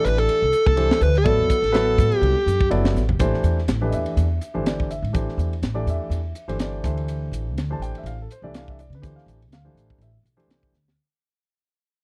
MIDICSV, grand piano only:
0, 0, Header, 1, 2, 480
1, 0, Start_track
1, 0, Tempo, 485044
1, 1243, Time_signature, 4, 2, 24, 8
1, 11914, End_track
2, 0, Start_track
2, 0, Title_t, "Grand piano"
2, 0, Program_c, 0, 0
2, 0, Note_on_c, 0, 52, 69
2, 0, Note_on_c, 0, 57, 63
2, 0, Note_on_c, 0, 62, 66
2, 0, Note_on_c, 0, 67, 65
2, 0, Note_on_c, 0, 74, 77
2, 389, Note_off_c, 0, 52, 0
2, 389, Note_off_c, 0, 62, 0
2, 390, Note_off_c, 0, 74, 0
2, 391, Note_off_c, 0, 57, 0
2, 391, Note_off_c, 0, 67, 0
2, 757, Note_on_c, 0, 57, 61
2, 757, Note_on_c, 0, 62, 58
2, 758, Note_on_c, 0, 52, 66
2, 760, Note_on_c, 0, 67, 59
2, 760, Note_on_c, 0, 72, 69
2, 1055, Note_off_c, 0, 52, 0
2, 1055, Note_off_c, 0, 57, 0
2, 1055, Note_off_c, 0, 62, 0
2, 1056, Note_off_c, 0, 67, 0
2, 1056, Note_off_c, 0, 72, 0
2, 1225, Note_on_c, 0, 69, 61
2, 1227, Note_on_c, 0, 54, 64
2, 1229, Note_on_c, 0, 59, 63
2, 1229, Note_on_c, 0, 64, 62
2, 1232, Note_on_c, 0, 74, 71
2, 1528, Note_off_c, 0, 69, 0
2, 1529, Note_off_c, 0, 54, 0
2, 1530, Note_off_c, 0, 59, 0
2, 1530, Note_off_c, 0, 64, 0
2, 1532, Note_off_c, 0, 74, 0
2, 1705, Note_on_c, 0, 71, 87
2, 1707, Note_on_c, 0, 59, 72
2, 1708, Note_on_c, 0, 64, 70
2, 1710, Note_on_c, 0, 54, 81
2, 1710, Note_on_c, 0, 69, 76
2, 2302, Note_off_c, 0, 71, 0
2, 2303, Note_off_c, 0, 59, 0
2, 2303, Note_off_c, 0, 64, 0
2, 2304, Note_off_c, 0, 54, 0
2, 2305, Note_off_c, 0, 69, 0
2, 2675, Note_on_c, 0, 54, 75
2, 2677, Note_on_c, 0, 64, 65
2, 2678, Note_on_c, 0, 59, 70
2, 2678, Note_on_c, 0, 74, 86
2, 2681, Note_on_c, 0, 69, 70
2, 2972, Note_off_c, 0, 54, 0
2, 2973, Note_off_c, 0, 64, 0
2, 2974, Note_off_c, 0, 59, 0
2, 2974, Note_off_c, 0, 74, 0
2, 2975, Note_off_c, 0, 69, 0
2, 3160, Note_on_c, 0, 52, 78
2, 3162, Note_on_c, 0, 57, 71
2, 3163, Note_on_c, 0, 62, 73
2, 3165, Note_on_c, 0, 67, 72
2, 3167, Note_on_c, 0, 72, 89
2, 3535, Note_off_c, 0, 52, 0
2, 3536, Note_off_c, 0, 57, 0
2, 3536, Note_off_c, 0, 62, 0
2, 3537, Note_off_c, 0, 67, 0
2, 3538, Note_off_c, 0, 72, 0
2, 3773, Note_on_c, 0, 52, 67
2, 3773, Note_on_c, 0, 62, 66
2, 3776, Note_on_c, 0, 57, 64
2, 3776, Note_on_c, 0, 67, 65
2, 3777, Note_on_c, 0, 71, 77
2, 3850, Note_on_c, 0, 75, 54
2, 3882, Note_off_c, 0, 75, 0
2, 3893, Note_on_c, 0, 76, 74
2, 4201, Note_off_c, 0, 52, 0
2, 4201, Note_off_c, 0, 62, 0
2, 4203, Note_off_c, 0, 57, 0
2, 4203, Note_off_c, 0, 67, 0
2, 4204, Note_off_c, 0, 71, 0
2, 4494, Note_on_c, 0, 67, 63
2, 4496, Note_on_c, 0, 62, 66
2, 4497, Note_on_c, 0, 52, 70
2, 4497, Note_on_c, 0, 57, 62
2, 4500, Note_on_c, 0, 72, 73
2, 4567, Note_off_c, 0, 76, 0
2, 4623, Note_on_c, 0, 74, 67
2, 4842, Note_off_c, 0, 67, 0
2, 4843, Note_off_c, 0, 52, 0
2, 4843, Note_off_c, 0, 57, 0
2, 4843, Note_off_c, 0, 62, 0
2, 4845, Note_off_c, 0, 72, 0
2, 4845, Note_off_c, 0, 74, 0
2, 4855, Note_on_c, 0, 76, 68
2, 5077, Note_on_c, 0, 57, 57
2, 5077, Note_on_c, 0, 62, 60
2, 5080, Note_on_c, 0, 67, 59
2, 5081, Note_off_c, 0, 76, 0
2, 5082, Note_on_c, 0, 52, 66
2, 5086, Note_on_c, 0, 72, 70
2, 5453, Note_off_c, 0, 57, 0
2, 5453, Note_off_c, 0, 62, 0
2, 5454, Note_off_c, 0, 67, 0
2, 5456, Note_off_c, 0, 52, 0
2, 5457, Note_off_c, 0, 72, 0
2, 5684, Note_on_c, 0, 57, 64
2, 5684, Note_on_c, 0, 62, 60
2, 5686, Note_on_c, 0, 67, 64
2, 5688, Note_on_c, 0, 52, 69
2, 5692, Note_on_c, 0, 74, 78
2, 5836, Note_on_c, 0, 76, 72
2, 6117, Note_off_c, 0, 57, 0
2, 6117, Note_off_c, 0, 62, 0
2, 6118, Note_off_c, 0, 67, 0
2, 6119, Note_off_c, 0, 52, 0
2, 6121, Note_off_c, 0, 74, 0
2, 6411, Note_on_c, 0, 57, 65
2, 6413, Note_on_c, 0, 67, 63
2, 6416, Note_on_c, 0, 52, 69
2, 6417, Note_on_c, 0, 72, 77
2, 6418, Note_on_c, 0, 62, 65
2, 6499, Note_off_c, 0, 76, 0
2, 6546, Note_on_c, 0, 74, 70
2, 6746, Note_off_c, 0, 62, 0
2, 6749, Note_off_c, 0, 67, 0
2, 6751, Note_off_c, 0, 57, 0
2, 6751, Note_off_c, 0, 72, 0
2, 6753, Note_off_c, 0, 52, 0
2, 6761, Note_on_c, 0, 62, 58
2, 6764, Note_on_c, 0, 67, 60
2, 6766, Note_on_c, 0, 57, 60
2, 6766, Note_on_c, 0, 72, 76
2, 6767, Note_off_c, 0, 74, 0
2, 6768, Note_on_c, 0, 52, 67
2, 6787, Note_on_c, 0, 76, 73
2, 6923, Note_off_c, 0, 76, 0
2, 7439, Note_off_c, 0, 62, 0
2, 7440, Note_off_c, 0, 67, 0
2, 7441, Note_off_c, 0, 57, 0
2, 7441, Note_off_c, 0, 72, 0
2, 7442, Note_off_c, 0, 52, 0
2, 7621, Note_on_c, 0, 52, 72
2, 7622, Note_on_c, 0, 67, 58
2, 7623, Note_on_c, 0, 62, 64
2, 7626, Note_on_c, 0, 72, 78
2, 7628, Note_on_c, 0, 57, 59
2, 7644, Note_on_c, 0, 81, 79
2, 7733, Note_off_c, 0, 81, 0
2, 7740, Note_on_c, 0, 79, 82
2, 7860, Note_off_c, 0, 79, 0
2, 7896, Note_on_c, 0, 76, 64
2, 7979, Note_off_c, 0, 76, 0
2, 7986, Note_on_c, 0, 77, 78
2, 8046, Note_off_c, 0, 52, 0
2, 8047, Note_off_c, 0, 67, 0
2, 8048, Note_off_c, 0, 62, 0
2, 8049, Note_off_c, 0, 72, 0
2, 8050, Note_off_c, 0, 57, 0
2, 8104, Note_off_c, 0, 77, 0
2, 8133, Note_on_c, 0, 69, 55
2, 8218, Note_off_c, 0, 69, 0
2, 8234, Note_on_c, 0, 72, 65
2, 8343, Note_on_c, 0, 67, 64
2, 8345, Note_on_c, 0, 52, 68
2, 8346, Note_on_c, 0, 57, 60
2, 8348, Note_off_c, 0, 72, 0
2, 8349, Note_on_c, 0, 62, 59
2, 8349, Note_on_c, 0, 74, 79
2, 8356, Note_on_c, 0, 76, 62
2, 8449, Note_off_c, 0, 76, 0
2, 8475, Note_on_c, 0, 77, 74
2, 8588, Note_off_c, 0, 77, 0
2, 8610, Note_on_c, 0, 76, 68
2, 8688, Note_off_c, 0, 52, 0
2, 8688, Note_off_c, 0, 67, 0
2, 8689, Note_off_c, 0, 57, 0
2, 8690, Note_off_c, 0, 62, 0
2, 8691, Note_off_c, 0, 74, 0
2, 8697, Note_off_c, 0, 76, 0
2, 8713, Note_on_c, 0, 74, 66
2, 8827, Note_off_c, 0, 74, 0
2, 8854, Note_on_c, 0, 71, 62
2, 8920, Note_on_c, 0, 57, 57
2, 8925, Note_on_c, 0, 62, 55
2, 8925, Note_on_c, 0, 67, 56
2, 8926, Note_on_c, 0, 52, 63
2, 8928, Note_on_c, 0, 72, 67
2, 8939, Note_off_c, 0, 71, 0
2, 9064, Note_on_c, 0, 77, 68
2, 9125, Note_off_c, 0, 77, 0
2, 9296, Note_off_c, 0, 57, 0
2, 9298, Note_off_c, 0, 62, 0
2, 9298, Note_off_c, 0, 67, 0
2, 9299, Note_off_c, 0, 52, 0
2, 9300, Note_off_c, 0, 72, 0
2, 9434, Note_on_c, 0, 77, 72
2, 9545, Note_on_c, 0, 62, 60
2, 9547, Note_on_c, 0, 67, 59
2, 9548, Note_on_c, 0, 52, 66
2, 9548, Note_on_c, 0, 72, 68
2, 9549, Note_on_c, 0, 57, 56
2, 9867, Note_off_c, 0, 77, 0
2, 9917, Note_on_c, 0, 76, 65
2, 9970, Note_off_c, 0, 62, 0
2, 9971, Note_off_c, 0, 52, 0
2, 9971, Note_off_c, 0, 67, 0
2, 9971, Note_off_c, 0, 72, 0
2, 9972, Note_off_c, 0, 57, 0
2, 10052, Note_off_c, 0, 76, 0
2, 10260, Note_on_c, 0, 52, 74
2, 10260, Note_on_c, 0, 62, 67
2, 10261, Note_on_c, 0, 67, 72
2, 10263, Note_on_c, 0, 57, 66
2, 10263, Note_on_c, 0, 72, 80
2, 10607, Note_off_c, 0, 52, 0
2, 10607, Note_off_c, 0, 62, 0
2, 10608, Note_off_c, 0, 67, 0
2, 10609, Note_off_c, 0, 57, 0
2, 10609, Note_off_c, 0, 72, 0
2, 11914, End_track
0, 0, End_of_file